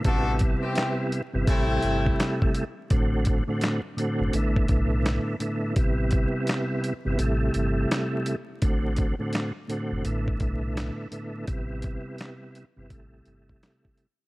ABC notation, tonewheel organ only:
X:1
M:4/4
L:1/16
Q:"Swing 16ths" 1/4=84
K:Ador
V:1 name="Tonewheel organ"
[C,G,B,E]6 z [C,G,B,E] [C,G,A,E]6 z2 | [A,,D,A,CF]3 [A,,D,A,CF]2 z [A,,D,A,CF]2 [A,,D,A,B,E]2 [A,,D,A,B,E]4 [A,,D,A,B,E]2 | [C,G,B,E]6 z [C,G,B,E] [C,G,A,E]6 z2 | [A,,D,A,CF]3 [A,,D,A,CF]2 z [A,,D,A,CF]2 [A,,D,A,B,E]2 [A,,D,A,B,E]4 [A,,D,A,B,E]2 |
[C,G,B,E]6 z [C,G,B,E] [C,G,A,E]6 z2 |]